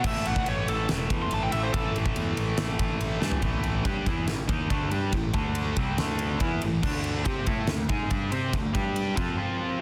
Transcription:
0.03 A1 A2 E3 A3, kick, crash
0.07 E5
0.15 snare
0.25 A1 F#5, ride
0.36 kick
0.46 A1 C#5, ride
0.68 A1 A4, ride
0.89 E1, snare, ride
1.10 E2, kick, ride
1.22 C6
1.31 A1 A5, ride
1.43 G5
1.51 A1 A2 E3 A3 E5, ride
1.63 C5
1.73 A2 E3 A3 A4, kick, ride
1.95 A1, ride
2.06 kick
2.16 E2, ride
2.37 A1, ride
2.57 A1, snare, ride
2.79 A1, kick, ride
3.01 A1, ride
3.21 G2 A2 E3 A3, snare
3.31 floor tom
3.41 A1 A2 E3 A3, kick, ride
3.63 ride
3.85 G2 G3 D4 G4, kick, ride
4.06 E2 E3 B3 E4, kick, ride
4.27 A1 A2 E3, snare, ride
4.48 D#2 D#3 A#3 D#4, kick, ride
4.69 D2 D3 A3 D4, kick, ride
4.91 G2 G3 D4 G4, ride
5.12 A1 A2 E3, kick, ride
5.33 D2 D3 A3 D4, kick, ride
5.55 ride
5.76 C2 C3 G3 C4, kick, ride
5.98 D2 D3 A3 D4, snare, ride
6.19 ride
6.40 E2 E3 B3 E4, kick, ride
6.62 A1 A2 E3, ride
6.82 D2 D3 A3 D4, kick, crash
7.04 ride
7.25 C3 C4 G4 C5, kick, ride
7.46 A2 A3 E4 A4, kick, ride
7.67 D2 D3 A3, snare, ride
7.89 G#2 G#3 D#4 G#4, kick, ride
8.10 G2 G3 D4 G4, kick, ride
8.32 C3 C4 G4 C5, ride
8.53 D2 D3 A3, kick, ride
8.74 G2 G3 D4 G4, kick, ride
8.96 ride
9.15 F2 F3 C4 F4, kick, ride
9.37 F3 C4 F4

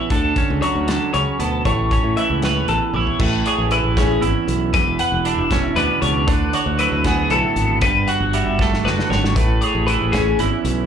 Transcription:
Already playing: E2 E3 C#4 C#5
0.10 D2 D3 A4, kick, closed hi-hat
0.36 C#4, kick, closed hi-hat
0.50 C#2
0.62 F#3 C#5, closed hi-hat
0.75 D2
0.87 D3 A4, snare, closed hi-hat
1.14 C#2 C#3 C#5, closed hi-hat
1.39 D2 B2 A4, closed hi-hat
1.65 A1 A2 C#5, kick, closed hi-hat
1.91 C#4, kick, closed hi-hat
2.04 A2
2.17 E3 E5, closed hi-hat
2.30 C#2
2.42 B4 C#5, snare, closed hi-hat
2.68 A1 E2 A4, closed hi-hat
2.93 A1 E4 C#5, high tom
3.07 floor tom
3.19 A1 A2 B4, kick, crash
3.46 G#4 C#5, closed hi-hat
3.58 A1
3.71 E3 E4 B4, closed hi-hat
3.84 A1
3.97 C#4 G#4, kick, snare, closed hi-hat
4.21 G#1 E2 E4, closed hi-hat
4.48 B1, closed hi-hat
4.74 E1 E2 B4, kick, closed hi-hat
4.99 B4 F#5, closed hi-hat
5.12 E1
5.25 E3 D4 E5, closed hi-hat
5.38 E1
5.51 C#4, kick, snare, closed hi-hat
5.76 D2 B2 D4 B4, closed hi-hat
6.02 C#2 C#5, closed hi-hat
6.27 D2 D3 B4, kick, closed hi-hat
6.53 F#4 C#5, closed hi-hat
6.66 D2
6.79 F#3 E4 B4, closed hi-hat
6.92 D2
7.04 B3 G#4, kick, snare, closed hi-hat
7.30 B1 A2 E4 A4, closed hi-hat
7.56 G#1, closed hi-hat
7.81 G1 G2 B4, kick, closed hi-hat
8.08 F#4 F#5, closed hi-hat
8.20 G1
8.33 G3 F#4 E5, closed hi-hat
8.46 G1
8.59 A3, kick, snare
8.73 snare
8.84 F#1 D3 F#4 B4, snare
8.99 snare
9.10 G#1 C#5, snare
9.24 snare
9.35 A1 A2 B4, kick, closed hi-hat
9.61 G#4 C#5, closed hi-hat
9.75 A1
9.87 E3 E4 B4, closed hi-hat
10.00 A1
10.12 C#4 G#4, kick, snare, closed hi-hat
10.39 G#1 E2 E4, closed hi-hat
10.64 B1, closed hi-hat

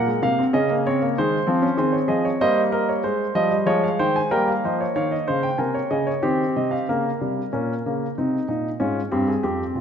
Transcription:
Already playing: A#4
0.06 G#3
0.22 C3 A#3 F5
0.39 C4
0.53 C#3 C#4 G#4 D#5
0.70 A#3
0.87 C4 C#5
1.02 A#3
1.18 D#3 G#3 C5
1.47 F3 C4
1.62 C#4
1.77 D#3 C4 G#4 C5
1.92 C#5
2.08 F3 G#4 D#5
2.25 C#5
2.41 G3 A#3 C5 D#5
2.72 A#4 D#5
2.89 C#5
3.04 G#3 C5
3.35 F3 G3 D#5
3.51 G3
3.66 F3 G#3 C#5 D#5
3.83 F5
3.99 D#3 C5 G5
4.16 G#5
4.31 G3 A#3 A#4 G5
4.48 F5
4.65 F3 C5 D#5
4.80 C#5
4.96 D#3 C#5 F5
5.11 D#5
5.28 C#3 C5 F5
5.43 G5
5.58 C3 A#4 G#5
5.74 C#5
5.91 C#3 G#4 D#5
6.07 C#5
6.23 D#3 C4 G4 C5
6.56 C3 D#5
6.71 F5
6.89 C#3 A#3 A#4
7.21 C3 G3
7.53 A#2 C#4 A#4
7.86 C#3 A#3
8.18 C3 C4 D#4
8.48 A#2 D#4
8.80 G#2 C#4 F4
9.11 G2 C4 G4
9.28 G#4
9.43 F2 C4 G4
9.75 A#2 F4

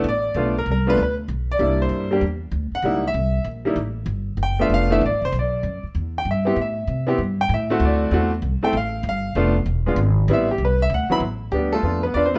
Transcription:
0.04 A1
0.09 D5
0.34 B1 A3 B3 D4 F4
0.58 A#4
0.66 C2
0.71 A#4
0.87 A3 B3 D4 F4 B4
0.97 D2
1.03 B4
1.28 B1
1.52 D5
1.59 C2 G3 A#3 D4 E4
1.82 C5
1.89 G2
2.11 G3 A#3 D4 G4
2.21 E2
2.51 D2
2.72 F#5, muted upright bass stroke
2.82 C#2 G3 A#3 D#4 E4
3.08 E5
3.14 C2
3.44 A#1
3.65 G3 A#3 D#4 E4
3.76 A1
4.06 G1
4.37 F#1
4.43 G5
4.59 A3 B3 D4 F4 E5
4.69 F1
4.74 F5
4.90 A3 B3 D4 E4 E5
5.01 A1
5.06 D5
5.11 G1
5.22 F1 C5
5.32 B1
5.39 D5
5.63 F#2
5.83 muted upright bass stroke
5.95 E2
6.18 G5
6.25 G2
6.31 E5
6.45 B3 C4 E4 G4
6.56 A2
6.61 E5
6.87 C3
7.07 B3 C4 E4 G4
7.18 G2
7.41 G5
7.49 A2
7.54 E5
7.70 A3 C4 E4 F#4
7.80 D2
7.85 D5
8.11 E2 A3 C4 E4 F#4
8.42 C2
8.61 A3 C4 E4 A4 G5, muted upright bass stroke
8.73 A1
8.77 F5
9.03 G1
9.09 F5
9.35 F1 A3 B3 D4 F4
9.66 E1
9.86 G#3 B3 D4 F4
9.96 G#1
10.28 A1 G3 B3 C4 E4
10.33 E5
10.51 G4
10.58 C2
10.65 B4
10.82 E5
10.90 D2
10.94 F#5
11.09 F#3 B3 C4 E4 B5, muted upright bass stroke
11.20 A1
11.52 D2 G3 B3 D4 G4
11.73 A3 F4 A4
11.83 F2 A3 B3 D4 F4
12.03 B3 B4
12.14 E2 D4 F4 B4 D5
12.26 C4 C5
12.34 A3 B3 D4 F4 B4

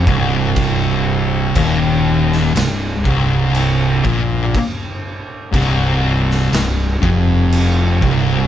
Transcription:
0.07 C1 C2, kick
0.56 kick, crash
1.55 D#1 D#2, kick, crash
2.32 snare
2.55 C1 C2, snare, crash
3.04 C1 C2, kick
3.54 crash
4.04 A#1 A#2, kick
4.54 kick, crash
5.52 C1 C2, kick, crash
6.31 snare
6.52 C1 C2, snare, crash
7.02 F1 F2, kick
7.52 crash
8.01 C1 C2, kick

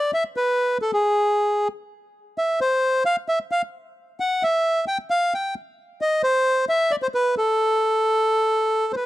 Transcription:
Already playing: D5
0.14 E5
0.36 B4
0.82 A4
0.93 G#4
2.38 E5
2.61 C5
3.06 F5
3.28 E5
3.51 F5
4.20 F#5
4.43 E5
4.88 G5
5.10 F5
5.34 G5
6.01 D#5
6.23 C5
6.69 E5
6.91 D5
7.02 C5
7.14 B4
7.38 A4
8.92 B4 C5

